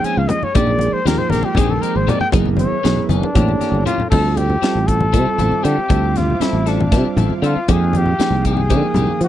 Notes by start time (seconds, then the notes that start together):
Already playing: F3 A#3 D#4 G#4 C#5 F5 C6
0.04 C4 C#4 G#4 G#5, muted fretless electric bass stroke, closed hi-hat
0.17 C#2 F5
0.28 D#5, closed hi-hat, low conga
0.43 C#5, muted fretless electric bass stroke, high conga
0.55 A#1 F3 G#3 A#3 C4 D#4 G4 G#4 A#4 D5 G5 C6, kick, closed hi-hat, muted conga
0.67 low conga
0.79 closed hi-hat, high conga
0.93 C5, muted fretless electric bass stroke
1.05 D#2 F3 G#3 A#3 C4 D#4 F4 G4 A#4, snare, closed hi-hat
1.18 C5, low conga
1.30 A#1 C4 D#4 G4 A#4, closed hi-hat, high conga, low conga
1.34 snare
1.43 G4, muted conga
1.55 A#1 F3 G#3 A#3 C4 D#4 G4 G#4, kick, closed hi-hat, low conga
1.69 A4, high conga
1.81 C4 D#4 G4 A#4, closed hi-hat, low conga
1.96 G#1 C5
2.07 G#3 C4 D#4 G4 D5, closed hi-hat, low conga
2.21 G5, muted fretless electric bass stroke, high conga
2.32 F#1 E3 F#3 B3 D#4 E4 G#4 B4 E5, kick, closed hi-hat, muted conga
2.46 low conga
2.57 C#5, closed hi-hat, high conga, low conga
2.72 muted fretless electric bass stroke
2.83 B1 E3 F#3 B3 D#4 E4 G#4, snare, closed hi-hat
2.96 low conga
3.09 F#1 B3 D4 D#4 G#4, closed hi-hat, high conga, low conga
3.23 muted conga, low conga
3.34 A1 E3 A#3 C#4 E4 G4 A4 C#5 G5 A#5, kick, closed hi-hat, low conga
3.48 high conga, low conga
3.59 A#3 C#4 G4, muted fretless electric bass stroke, snare, closed hi-hat, high conga
3.72 G1, high conga
3.86 E3 A#3 C#4 F4 G4, closed hi-hat, low conga
3.98 muted fretless electric bass stroke, low conga
4.10 D2 F3 G3 C4 E4 F4 A4 C5 E5 F5 D6, kick, crash, muted conga
4.37 G4, closed hi-hat, high conga
4.50 low conga
4.62 F3 G3 C4 E4 F4 G4 A4, muted fretless electric bass stroke, snare, closed hi-hat, low conga
4.75 A1
4.87 A4, kick, closed hi-hat
5.01 muted conga, high conga
5.13 C3 F3 G3 C4 E4 F4 A4, kick, closed hi-hat
5.26 muted fretless electric bass stroke, low conga
5.38 A1 C4 E4 A4, closed hi-hat, low conga
5.52 high conga, low conga
5.63 D3 F3 C4 E4 G4 A4, closed hi-hat
5.78 muted fretless electric bass stroke
5.89 D2 F3 G3 C4 E4 F4 G4 A4, kick, closed hi-hat, muted conga
6.16 F4, snare, closed hi-hat, high conga
6.30 low conga
6.40 F3 G3 C4 E4 F4 A4 C5, muted fretless electric bass stroke, snare, closed hi-hat, low conga
6.53 A1, low conga
6.66 C4 D4 E4 A4, snare, closed hi-hat
6.80 muted conga, high conga
6.92 C3 F3 G3 C4 E4 F4 A4 C5, kick, snare, closed hi-hat, low conga
7.04 muted fretless electric bass stroke, low conga
7.16 A1 C4 E4 A4, closed hi-hat, low conga
7.30 high conga, low conga
7.42 D3 F3 C4 E4 F4 A4, closed hi-hat
7.56 muted fretless electric bass stroke
7.68 F2 F3 G#3 A#3 C4 D#4 G4 G#4 G5 D#6, kick, closed hi-hat, muted conga
7.81 low conga
7.93 G4, closed hi-hat, high conga
8.06 low conga
8.19 F3 G#3 A#3 C4 D#4 G4 G#4, muted fretless electric bass stroke, snare, closed hi-hat, low conga
8.30 C2
8.45 C4 D#4 G4 G#4, kick, closed hi-hat
8.57 high conga
8.70 D3 F3 G#3 A#3 C4 D#4 G4 A#4, kick, closed hi-hat, low conga
8.82 muted fretless electric bass stroke, low conga
8.94 C2 C4 D#4 G4, closed hi-hat, low conga
9.07 high conga, low conga
9.21 F3 G4, closed hi-hat